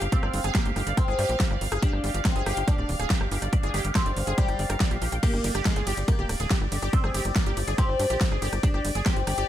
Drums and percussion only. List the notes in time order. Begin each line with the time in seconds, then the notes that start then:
0.02 cross-stick, closed hi-hat
0.12 kick, closed hi-hat
0.23 cross-stick
0.34 open hi-hat
0.44 cross-stick, closed hi-hat
0.55 kick, snare, closed hi-hat
0.65 closed hi-hat
0.76 cross-stick, open hi-hat
0.87 closed hi-hat
0.97 kick, cross-stick, closed hi-hat
1.19 cross-stick, open hi-hat
1.29 closed hi-hat
1.40 kick, snare, closed hi-hat
1.51 cross-stick
1.61 open hi-hat
1.72 cross-stick, closed hi-hat
1.82 kick, closed hi-hat
1.93 cross-stick
2.04 open hi-hat
2.14 closed hi-hat
2.25 kick, cross-stick, snare, closed hi-hat
2.36 closed hi-hat
2.46 cross-stick, open hi-hat
2.57 closed hi-hat
2.68 kick, cross-stick, closed hi-hat
2.89 open hi-hat
3.00 cross-stick, closed hi-hat
3.10 kick, snare, closed hi-hat
3.21 cross-stick
3.31 open hi-hat
3.42 cross-stick, closed hi-hat
3.53 kick, closed hi-hat
3.63 closed hi-hat
3.74 cross-stick, open hi-hat
3.85 closed hi-hat
3.95 kick, cross-stick, snare, closed hi-hat
4.06 closed hi-hat
4.17 open hi-hat
4.27 closed hi-hat
4.38 kick, closed hi-hat
4.48 cross-stick, closed hi-hat
4.59 open hi-hat
4.70 cross-stick, closed hi-hat
4.80 kick, snare, closed hi-hat
4.91 cross-stick, closed hi-hat
5.02 open hi-hat
5.12 closed hi-hat
5.23 kick, closed hi-hat, crash
5.34 cross-stick
5.44 open hi-hat, ride
5.55 cross-stick, closed hi-hat
5.65 kick, snare, closed hi-hat
5.76 cross-stick, closed hi-hat
5.87 open hi-hat, ride
5.97 closed hi-hat
6.08 kick, cross-stick, closed hi-hat
6.29 cross-stick, open hi-hat, ride
6.40 closed hi-hat
6.51 kick, cross-stick, snare, closed hi-hat
6.72 open hi-hat, ride
6.83 cross-stick, closed hi-hat
6.93 kick, closed hi-hat
7.04 cross-stick
7.14 open hi-hat, ride
7.25 cross-stick, closed hi-hat
7.36 kick, snare, closed hi-hat
7.46 closed hi-hat
7.57 cross-stick, open hi-hat, ride
7.68 closed hi-hat
7.78 kick, cross-stick, closed hi-hat
8.00 cross-stick, open hi-hat, ride
8.10 closed hi-hat
8.21 kick, snare, closed hi-hat
8.31 cross-stick
8.42 open hi-hat, ride
8.53 cross-stick, closed hi-hat
8.63 kick, closed hi-hat
8.74 cross-stick
8.85 open hi-hat, ride
8.95 closed hi-hat
9.06 kick, cross-stick, snare, closed hi-hat
9.16 closed hi-hat
9.27 cross-stick, open hi-hat, ride
9.38 closed hi-hat